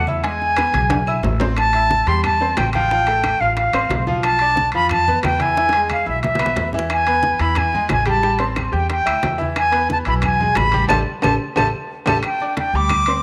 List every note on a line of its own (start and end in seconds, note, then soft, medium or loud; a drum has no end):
0.00 0.68 E2 medium
0.07 0.21 E4 medium
0.07 0.22 E5 medium
0.07 0.22 E6 medium
0.07 high conga medium
0.23 0.51 G#3 medium
0.23 0.51 G#4 medium
0.23 0.51 G#5 medium
0.23 1.21 G#5 medium
0.23 high bongo medium
0.23 high conga soft
0.23 high timbale medium
0.41 high bongo soft
0.41 high conga soft
0.57 0.71 B3 medium
0.57 0.71 B4 medium
0.57 0.72 B5 medium
0.57 high bongo medium
0.57 high conga medium
0.57 high timbale loud
0.57 low timbale medium
0.57 claves medium
0.73 1.20 B1 loud
0.73 1.01 G#4 medium
0.73 1.01 G#5 medium
0.73 1.01 G#6 medium
0.73 high bongo soft
0.73 high conga loud
0.73 high timbale medium
0.90 high bongo medium
0.90 high conga loud
0.90 high timbale loud
1.07 1.35 E4 medium
1.07 1.35 E5 medium
1.07 1.35 E6 medium
1.07 high bongo soft
1.07 claves medium
1.23 2.01 A1 loud
1.23 high bongo soft
1.23 low bongo medium
1.23 low conga medium
1.23 low timbale medium
1.40 1.54 C4 medium
1.40 1.54 C5 medium
1.40 1.55 C6 medium
1.40 low conga loud
1.40 low timbale loud
1.56 2.09 A5 loud
1.56 high bongo medium
1.56 high conga soft
1.56 high timbale medium
1.56 claves medium
1.73 2.02 E4 medium
1.73 2.02 E5 medium
1.73 2.02 E6 medium
1.73 high bongo soft
1.73 high conga soft
1.73 high timbale medium
1.90 high bongo medium
1.90 high conga loud
1.90 low timbale medium
2.06 2.53 E2 medium
2.06 2.35 G3 medium
2.06 2.35 G4 medium
2.06 2.35 G5 medium
2.06 2.24 C6 loud
2.06 high conga soft
2.06 high timbale medium
2.24 2.59 A5 loud
2.24 high bongo medium
2.24 high conga soft
2.24 low conga medium
2.24 high timbale medium
2.24 claves medium
2.40 2.68 C4 medium
2.40 2.68 C5 medium
2.40 2.69 C6 medium
2.40 high bongo soft
2.40 high conga soft
2.57 3.35 A1 medium
2.57 2.73 G5 loud
2.57 high bongo medium
2.57 low bongo medium
2.57 high conga medium
2.57 high timbale loud
2.57 low timbale medium
2.57 claves medium
2.73 2.88 F3 medium
2.73 2.88 F4 medium
2.73 2.88 F5 medium
2.73 3.42 G5 loud
2.73 high bongo soft
2.73 high conga medium
2.73 high timbale medium
2.91 3.05 F3 medium
2.91 3.05 F4 medium
2.91 3.05 F5 medium
2.91 high bongo medium
2.91 high conga soft
3.07 3.35 A3 medium
3.07 3.35 A4 medium
3.07 3.35 A5 medium
3.07 high bongo soft
3.07 high conga soft
3.07 high timbale medium
3.24 high bongo medium
3.24 high conga medium
3.24 high timbale medium
3.24 low timbale medium
3.24 claves medium
3.40 3.71 A1 medium
3.40 3.68 F4 medium
3.40 3.55 F5 medium
3.40 3.69 F5 medium
3.40 3.69 F6 medium
3.40 high conga soft
3.56 4.03 F5 medium
3.56 high bongo medium
3.56 high conga soft
3.56 high timbale medium
3.73 3.89 A1 medium
3.73 4.01 C4 medium
3.73 4.01 C5 medium
3.73 4.02 C6 medium
3.73 high conga soft
3.73 high timbale medium
3.73 claves medium
3.89 4.68 B1 medium
3.89 high bongo medium
3.89 low bongo medium
3.89 high conga medium
3.89 high timbale medium
3.89 low timbale medium
4.07 4.35 F3 medium
4.07 4.35 F4 medium
4.07 4.35 F5 medium
4.07 high bongo soft
4.07 high conga medium
4.23 4.70 A5 loud
4.23 high bongo medium
4.23 high timbale medium
4.23 claves medium
4.39 4.68 D4 medium
4.39 4.68 D5 medium
4.39 4.69 D6 medium
4.39 high bongo soft
4.39 high conga soft
4.39 high timbale medium
4.56 high bongo medium
4.56 high conga loud
4.56 low timbale medium
4.72 5.20 F2 medium
4.72 5.02 F3 medium
4.72 5.02 F4 medium
4.72 5.02 F5 medium
4.72 4.90 B5 loud
4.72 high conga soft
4.72 high timbale medium
4.89 5.22 A5 loud
4.89 high bongo medium
4.89 high conga soft
4.89 low conga medium
4.89 high timbale medium
4.89 claves medium
5.08 5.35 B3 medium
5.08 5.35 B4 medium
5.08 5.35 B5 medium
5.08 high bongo soft
5.08 high conga soft
5.08 low conga medium
5.23 6.01 E2 loud
5.23 5.43 G5 medium
5.23 high bongo medium
5.23 low bongo medium
5.23 high conga medium
5.23 high timbale medium
5.23 low timbale medium
5.23 claves medium
5.39 5.53 E3 medium
5.39 5.54 E4 medium
5.39 5.54 E5 medium
5.39 5.91 G#5 loud
5.39 high bongo soft
5.39 high conga medium
5.39 high timbale medium
5.57 5.71 E3 medium
5.57 5.71 E4 medium
5.57 5.71 E5 medium
5.57 high bongo medium
5.69 high bongo loud
5.69 high timbale medium
5.74 6.02 G#3 medium
5.74 6.01 G#4 medium
5.74 6.02 G#5 medium
5.74 high conga soft
5.90 6.07 F5 medium
5.90 high conga medium
5.90 high timbale medium
5.90 low timbale medium
5.90 claves medium
6.06 6.54 B1 medium
6.06 6.34 E4 medium
6.06 6.34 E5 medium
6.06 6.23 E5 medium
6.06 6.34 E6 medium
6.06 high conga soft
6.23 6.70 E5 medium
6.23 low bongo medium
6.23 high conga medium
6.23 high timbale medium
6.35 6.67 B3 medium
6.35 6.67 B4 medium
6.35 low bongo loud
6.39 6.67 B5 medium
6.39 high conga medium
6.39 high timbale loud
6.39 claves medium
6.46 low bongo loud
6.56 7.34 E2 medium
6.56 low bongo medium
6.56 low conga medium
6.56 high timbale medium
6.56 low timbale medium
6.73 7.01 E3 medium
6.73 7.01 E4 medium
6.73 7.01 E5 medium
6.73 low conga loud
6.79 low bongo medium
6.90 7.43 G#5 medium
6.90 high bongo medium
6.90 high conga soft
6.90 high timbale medium
6.90 claves medium
7.07 7.34 B3 medium
7.07 7.34 B4 medium
7.07 7.35 B5 medium
7.07 high bongo soft
7.07 high conga soft
7.07 high timbale medium
7.23 high bongo medium
7.23 high conga medium
7.23 low timbale medium
7.39 7.86 E2 medium
7.39 7.67 E3 medium
7.39 7.67 E4 medium
7.39 7.68 E5 medium
7.39 7.59 B5 medium
7.39 high conga soft
7.39 high timbale medium
7.55 7.91 G#5 medium
7.55 high bongo medium
7.55 high conga soft
7.55 low conga medium
7.55 high timbale medium
7.55 claves medium
7.73 8.01 G#3 medium
7.73 8.01 G#4 medium
7.73 8.02 G#5 medium
7.73 high bongo soft
7.73 high conga soft
7.73 low conga medium
7.89 8.67 A1 medium
7.89 8.07 G#5 medium
7.89 high bongo medium
7.89 low bongo medium
7.89 high conga medium
7.89 high timbale medium
7.89 low timbale medium
7.89 claves medium
8.06 8.20 G3 medium
8.06 8.20 G4 medium
8.06 8.21 G5 medium
8.06 8.45 A5 medium
8.06 high bongo soft
8.06 high conga medium
8.06 high timbale medium
8.23 8.37 G3 medium
8.23 8.37 G4 medium
8.23 8.38 G5 medium
8.23 high bongo medium
8.23 high conga soft
8.39 8.67 C4 medium
8.39 8.67 C5 medium
8.39 8.67 C6 medium
8.39 high bongo soft
8.39 high conga soft
8.39 high timbale medium
8.56 high bongo medium
8.56 high conga medium
8.56 high timbale medium
8.56 low timbale medium
8.56 claves medium
8.72 9.04 E2 medium
8.72 9.00 G4 medium
8.72 9.00 G5 medium
8.72 8.90 G5 medium
8.72 9.00 G6 medium
8.72 high conga soft
8.90 9.37 G5 medium
8.90 high bongo medium
8.90 high conga soft
8.90 high timbale medium
9.06 9.22 D2 medium
9.06 9.33 E4 medium
9.06 9.34 E5 medium
9.06 9.34 E6 medium
9.06 high conga soft
9.06 high timbale loud
9.06 claves medium
9.23 10.01 E2 medium
9.23 high bongo medium
9.23 low bongo medium
9.23 high conga medium
9.23 high timbale medium
9.23 low timbale medium
9.38 9.66 E3 medium
9.38 9.66 E4 medium
9.38 9.66 E5 medium
9.38 high bongo soft
9.38 high conga medium
9.56 9.88 G#5 loud
9.56 high bongo medium
9.56 high conga soft
9.56 high timbale medium
9.56 claves medium
9.71 10.00 B3 medium
9.71 10.00 B4 medium
9.71 10.00 B5 medium
9.71 high bongo soft
9.71 high conga soft
9.71 high timbale medium
9.89 9.98 A5 medium
9.89 high bongo medium
9.89 high conga medium
9.89 low timbale medium
10.05 10.53 B1 loud
10.05 10.34 E3 medium
10.05 10.34 E4 medium
10.05 10.34 E5 medium
10.05 10.14 B5 medium
10.05 high conga soft
10.05 high timbale medium
10.22 10.58 G#5 medium
10.22 high bongo medium
10.22 high conga soft
10.22 low conga medium
10.22 high timbale medium
10.22 claves medium
10.40 10.67 G#3 medium
10.40 10.68 G#4 medium
10.40 10.68 G#5 medium
10.40 high bongo soft
10.40 high conga soft
10.40 low conga medium
10.55 10.87 A1 loud
10.55 10.88 B5 loud
10.55 high bongo medium
10.55 low bongo medium
10.55 high conga medium
10.55 high timbale medium
10.55 low timbale medium
10.55 claves medium
10.72 10.87 G3 medium
10.72 10.87 G4 medium
10.72 10.87 G5 medium
10.72 high bongo soft
10.72 high conga medium
10.72 high timbale medium
10.88 11.02 A1 loud
10.88 11.01 G4 loud
10.88 11.01 A4 medium
10.88 11.01 C5 medium
10.88 11.00 A5 medium
10.88 low bongo loud
10.88 high conga loud
10.88 high timbale loud
10.88 claves loud
11.22 11.36 A1 medium
11.22 11.35 G4 medium
11.22 11.34 A4 medium
11.22 11.34 C5 loud
11.22 11.34 A5 medium
11.22 low bongo loud
11.22 high conga loud
11.22 high timbale medium
11.22 claves loud
11.56 11.69 A1 medium
11.56 11.67 G4 medium
11.56 11.68 A4 loud
11.56 11.68 C5 medium
11.56 11.67 A5 medium
11.56 low bongo loud
11.56 high conga medium
11.56 high timbale loud
11.56 claves loud
12.06 12.19 A1 medium
12.06 12.18 G4 loud
12.06 12.18 A4 loud
12.06 12.18 C5 medium
12.06 12.18 A5 medium
12.06 low bongo loud
12.06 high conga loud
12.06 high timbale loud
12.06 claves loud
12.23 12.55 G5 medium
12.23 high bongo medium
12.23 high conga soft
12.23 high timbale medium
12.23 claves medium
12.40 12.68 D4 medium
12.40 12.68 D5 medium
12.40 12.69 D6 medium
12.40 high bongo soft
12.40 high conga soft
12.57 12.77 G5 medium
12.57 high bongo medium
12.57 high conga loud
12.57 high timbale medium
12.57 low timbale medium
12.73 13.20 D2 medium
12.73 13.02 G3 medium
12.73 13.02 G4 medium
12.73 13.02 G5 medium
12.73 13.23 D6 medium
12.73 high bongo soft
12.73 high conga soft
12.89 high bongo medium
12.89 high conga soft
12.89 low conga medium
12.89 high timbale medium
12.89 claves medium
13.06 13.23 C4 medium
13.06 13.23 C5 medium
13.06 13.23 C6 medium
13.06 high bongo soft
13.06 high conga soft
13.06 high timbale medium